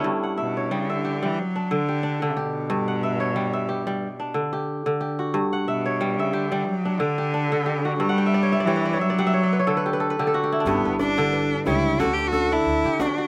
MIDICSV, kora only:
0, 0, Header, 1, 2, 480
1, 0, Start_track
1, 0, Tempo, 664452
1, 24, Time_signature, 4, 2, 24, 8
1, 9588, End_track
2, 0, Start_track
2, 0, Title_t, "Kora"
2, 0, Program_c, 0, 46
2, 0, Note_on_c, 0, 61, 69
2, 0, Note_on_c, 0, 62, 65
2, 0, Note_on_c, 0, 64, 70
2, 0, Note_on_c, 0, 66, 65
2, 0, Note_on_c, 0, 67, 67
2, 0, Note_on_c, 0, 69, 69
2, 0, Note_on_c, 0, 71, 67
2, 30, Note_on_c, 0, 43, 72
2, 73, Note_off_c, 0, 66, 0
2, 147, Note_off_c, 0, 71, 0
2, 169, Note_on_c, 0, 78, 55
2, 213, Note_off_c, 0, 67, 0
2, 265, Note_off_c, 0, 69, 0
2, 271, Note_on_c, 0, 76, 57
2, 411, Note_on_c, 0, 73, 53
2, 454, Note_off_c, 0, 62, 0
2, 514, Note_on_c, 0, 55, 70
2, 558, Note_off_c, 0, 78, 0
2, 644, Note_off_c, 0, 76, 0
2, 647, Note_on_c, 0, 76, 53
2, 756, Note_on_c, 0, 67, 56
2, 877, Note_off_c, 0, 55, 0
2, 885, Note_on_c, 0, 55, 69
2, 986, Note_off_c, 0, 64, 0
2, 1015, Note_off_c, 0, 43, 0
2, 1016, Note_off_c, 0, 55, 0
2, 1124, Note_on_c, 0, 62, 56
2, 1167, Note_off_c, 0, 61, 0
2, 1167, Note_off_c, 0, 73, 0
2, 1235, Note_on_c, 0, 50, 67
2, 1359, Note_off_c, 0, 67, 0
2, 1362, Note_on_c, 0, 67, 55
2, 1394, Note_off_c, 0, 76, 0
2, 1465, Note_off_c, 0, 62, 0
2, 1467, Note_on_c, 0, 62, 61
2, 1596, Note_off_c, 0, 50, 0
2, 1605, Note_on_c, 0, 50, 69
2, 1706, Note_off_c, 0, 67, 0
2, 1709, Note_on_c, 0, 67, 61
2, 1949, Note_on_c, 0, 43, 77
2, 1973, Note_off_c, 0, 50, 0
2, 2079, Note_on_c, 0, 78, 58
2, 2123, Note_off_c, 0, 67, 0
2, 2190, Note_on_c, 0, 76, 56
2, 2312, Note_on_c, 0, 73, 59
2, 2356, Note_off_c, 0, 62, 0
2, 2426, Note_on_c, 0, 55, 73
2, 2469, Note_off_c, 0, 78, 0
2, 2550, Note_off_c, 0, 76, 0
2, 2553, Note_on_c, 0, 76, 59
2, 2663, Note_on_c, 0, 67, 57
2, 2785, Note_off_c, 0, 55, 0
2, 2794, Note_on_c, 0, 55, 71
2, 2933, Note_off_c, 0, 43, 0
2, 2933, Note_off_c, 0, 55, 0
2, 3031, Note_on_c, 0, 62, 55
2, 3074, Note_off_c, 0, 73, 0
2, 3138, Note_on_c, 0, 50, 69
2, 3267, Note_off_c, 0, 67, 0
2, 3270, Note_on_c, 0, 67, 61
2, 3299, Note_off_c, 0, 76, 0
2, 3502, Note_off_c, 0, 50, 0
2, 3511, Note_on_c, 0, 50, 64
2, 3613, Note_off_c, 0, 67, 0
2, 3616, Note_on_c, 0, 67, 57
2, 3749, Note_on_c, 0, 66, 54
2, 3857, Note_on_c, 0, 43, 79
2, 3893, Note_off_c, 0, 50, 0
2, 3993, Note_on_c, 0, 78, 63
2, 4036, Note_off_c, 0, 67, 0
2, 4102, Note_on_c, 0, 76, 61
2, 4230, Note_on_c, 0, 73, 64
2, 4274, Note_off_c, 0, 62, 0
2, 4339, Note_on_c, 0, 55, 78
2, 4382, Note_off_c, 0, 66, 0
2, 4382, Note_off_c, 0, 78, 0
2, 4472, Note_off_c, 0, 76, 0
2, 4475, Note_on_c, 0, 76, 62
2, 4575, Note_on_c, 0, 67, 64
2, 4699, Note_off_c, 0, 55, 0
2, 4707, Note_on_c, 0, 55, 75
2, 4853, Note_off_c, 0, 43, 0
2, 4853, Note_off_c, 0, 55, 0
2, 4951, Note_on_c, 0, 62, 55
2, 4994, Note_off_c, 0, 73, 0
2, 5055, Note_on_c, 0, 50, 74
2, 5184, Note_off_c, 0, 67, 0
2, 5187, Note_on_c, 0, 67, 59
2, 5222, Note_off_c, 0, 76, 0
2, 5298, Note_off_c, 0, 62, 0
2, 5301, Note_on_c, 0, 62, 62
2, 5423, Note_off_c, 0, 50, 0
2, 5432, Note_on_c, 0, 50, 70
2, 5530, Note_off_c, 0, 67, 0
2, 5533, Note_on_c, 0, 67, 60
2, 5671, Note_on_c, 0, 66, 54
2, 5778, Note_on_c, 0, 43, 81
2, 5814, Note_off_c, 0, 50, 0
2, 5845, Note_on_c, 0, 78, 71
2, 5909, Note_on_c, 0, 79, 67
2, 5952, Note_off_c, 0, 66, 0
2, 5968, Note_on_c, 0, 76, 64
2, 6026, Note_on_c, 0, 74, 66
2, 6088, Note_on_c, 0, 73, 63
2, 6131, Note_off_c, 0, 62, 0
2, 6154, Note_off_c, 0, 76, 0
2, 6157, Note_on_c, 0, 76, 70
2, 6211, Note_off_c, 0, 74, 0
2, 6214, Note_on_c, 0, 74, 67
2, 6257, Note_off_c, 0, 73, 0
2, 6265, Note_on_c, 0, 55, 75
2, 6266, Note_on_c, 0, 73, 63
2, 6308, Note_off_c, 0, 78, 0
2, 6327, Note_on_c, 0, 71, 67
2, 6393, Note_off_c, 0, 74, 0
2, 6396, Note_on_c, 0, 74, 66
2, 6440, Note_off_c, 0, 73, 0
2, 6451, Note_on_c, 0, 73, 62
2, 6507, Note_off_c, 0, 76, 0
2, 6510, Note_on_c, 0, 76, 63
2, 6553, Note_off_c, 0, 67, 0
2, 6571, Note_off_c, 0, 74, 0
2, 6574, Note_on_c, 0, 74, 67
2, 6582, Note_off_c, 0, 79, 0
2, 6617, Note_off_c, 0, 73, 0
2, 6627, Note_off_c, 0, 55, 0
2, 6635, Note_on_c, 0, 55, 79
2, 6637, Note_on_c, 0, 78, 75
2, 6691, Note_off_c, 0, 76, 0
2, 6694, Note_on_c, 0, 76, 73
2, 6744, Note_on_c, 0, 73, 61
2, 6775, Note_off_c, 0, 43, 0
2, 6775, Note_off_c, 0, 55, 0
2, 6788, Note_off_c, 0, 74, 0
2, 6815, Note_on_c, 0, 74, 63
2, 6879, Note_off_c, 0, 71, 0
2, 6882, Note_on_c, 0, 71, 62
2, 6928, Note_off_c, 0, 73, 0
2, 6931, Note_on_c, 0, 73, 66
2, 6974, Note_off_c, 0, 74, 0
2, 6985, Note_on_c, 0, 69, 66
2, 6986, Note_on_c, 0, 50, 76
2, 7054, Note_off_c, 0, 71, 0
2, 7057, Note_on_c, 0, 71, 64
2, 7121, Note_on_c, 0, 67, 68
2, 7164, Note_off_c, 0, 78, 0
2, 7172, Note_off_c, 0, 71, 0
2, 7175, Note_on_c, 0, 71, 70
2, 7222, Note_off_c, 0, 69, 0
2, 7225, Note_on_c, 0, 69, 65
2, 7295, Note_off_c, 0, 71, 0
2, 7298, Note_on_c, 0, 71, 71
2, 7355, Note_off_c, 0, 50, 0
2, 7362, Note_off_c, 0, 67, 0
2, 7363, Note_on_c, 0, 50, 72
2, 7365, Note_on_c, 0, 67, 66
2, 7407, Note_off_c, 0, 73, 0
2, 7416, Note_off_c, 0, 69, 0
2, 7419, Note_on_c, 0, 69, 63
2, 7441, Note_off_c, 0, 76, 0
2, 7471, Note_on_c, 0, 66, 71
2, 7515, Note_off_c, 0, 67, 0
2, 7539, Note_on_c, 0, 67, 63
2, 7602, Note_on_c, 0, 64, 62
2, 7659, Note_on_c, 0, 62, 62
2, 7709, Note_on_c, 0, 43, 80
2, 7737, Note_off_c, 0, 50, 0
2, 7752, Note_off_c, 0, 66, 0
2, 7837, Note_off_c, 0, 71, 0
2, 7840, Note_on_c, 0, 71, 59
2, 7942, Note_on_c, 0, 74, 61
2, 8076, Note_on_c, 0, 50, 77
2, 8180, Note_off_c, 0, 71, 0
2, 8183, Note_on_c, 0, 71, 64
2, 8371, Note_off_c, 0, 69, 0
2, 8428, Note_on_c, 0, 55, 73
2, 8429, Note_on_c, 0, 73, 57
2, 8473, Note_off_c, 0, 62, 0
2, 8473, Note_off_c, 0, 74, 0
2, 8559, Note_off_c, 0, 67, 0
2, 8659, Note_off_c, 0, 50, 0
2, 8665, Note_on_c, 0, 62, 61
2, 8668, Note_on_c, 0, 50, 75
2, 8699, Note_off_c, 0, 43, 0
2, 8699, Note_off_c, 0, 55, 0
2, 8734, Note_off_c, 0, 64, 0
2, 8902, Note_on_c, 0, 69, 64
2, 9042, Note_off_c, 0, 62, 0
2, 9045, Note_on_c, 0, 62, 72
2, 9071, Note_off_c, 0, 71, 0
2, 9088, Note_off_c, 0, 73, 0
2, 9287, Note_on_c, 0, 67, 58
2, 9390, Note_on_c, 0, 66, 70
2, 9518, Note_off_c, 0, 66, 0
2, 9521, Note_on_c, 0, 66, 56
2, 9588, Note_off_c, 0, 50, 0
2, 9588, Note_off_c, 0, 62, 0
2, 9588, Note_off_c, 0, 66, 0
2, 9588, Note_off_c, 0, 67, 0
2, 9588, Note_off_c, 0, 69, 0
2, 9588, End_track
0, 0, End_of_file